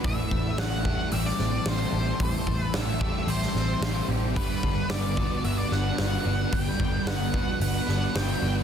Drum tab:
HH |o---o---o---o---|o---o---o---o---|o---o---o---o---|o---o---o---o---|
SD |----o----oo-o---|----o----oo-o---|----o-----o-o---|----o-----o-o---|
BD |o-o---o---------|o-o---o---------|o-o---o---------|o-o---o---------|